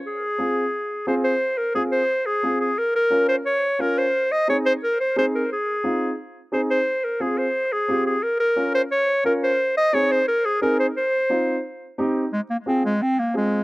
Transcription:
<<
  \new Staff \with { instrumentName = "Clarinet" } { \time 4/4 \key f \minor \tempo 4 = 176 aes'2. c''8 c''8~ | c''8 bes'8 aes'8 c''4 aes'4 aes'8 | bes'8 bes'4 c''8 des''4 bes'8 c''8~ | c''8 ees''8 des''8 c''8 bes'8 c''8 c''8 bes'8 |
aes'2 r4 c''8 c''8~ | c''8 bes'8 aes'8 c''4 aes'4 aes'8 | bes'8 bes'4 c''8 des''4 bes'8 c''8~ | c''8 ees''8 des''8 c''8 bes'8 aes'8 bes'8 c''8 |
c''2 r2 | aes8 bes8 c'8 aes8 c'8 bes8 aes4 | }
  \new Staff \with { instrumentName = "Upright piano" } { \time 4/4 \key f \minor r4 <c' f' aes'>8 r4. <c' f' aes'>8 r8 | r4 <c' f' aes'>8 r4. <c' f' aes'>8 r8 | r4 <des' f' bes'>8 r4. <des' f' bes'>8 r8 | r4 <c' ees' aes'>8 r4. <c' ees' aes'>8 r8 |
r4 <c' ees' f'>8 r4. <c' ees' aes'>8 r8 | r4 <c' f' aes'>8 r4. <c' f' g'>8 r8 | r4 <des' f' bes'>8 r4. <des' f' bes'>8 r8 | r4 <c' ees' aes'>8 r4. <c' ees' aes'>8 r8 |
r4 <c' ees' f'>8 r4. <c' ees' g'>8 r8 | r4 <c' f' aes'>8 r4. <c' f' aes'>8 r8 | }
>>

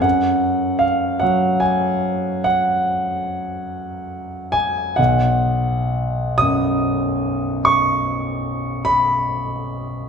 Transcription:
<<
  \new Staff \with { instrumentName = "Grand piano" } { \time 12/8 \key ces \lydian \tempo 4. = 48 ges''4 f''8 ges''8 aes''4 ges''2~ ges''8 aes''8 | fis''4. dis'''4. des'''4. b''4. | }
  \new Staff \with { instrumentName = "Grand piano" } { \clef bass \time 12/8 \key ces \lydian ges,4. ges1~ ges8 | b,,4. fis,1~ fis,8 | }
>>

